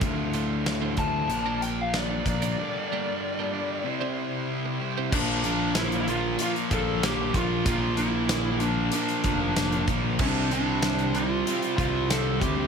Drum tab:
CC |----------------|----------------|x---------------|----------------|
HH |x-x-x-x-x-x-x-xx|----------------|--x-xxx-xxx-x-x-|x-x-x-x-xxx-xxx-|
SD |----o-------o---|----------------|----o-------o---|----o-------o---|
BD |o-----o-------o-|----------------|o---------o---o-|o---------o---o-|

CC |x---------------|
HH |--x-xxx-xxx-x-x-|
SD |----o-------o---|
BD |o---------o---o-|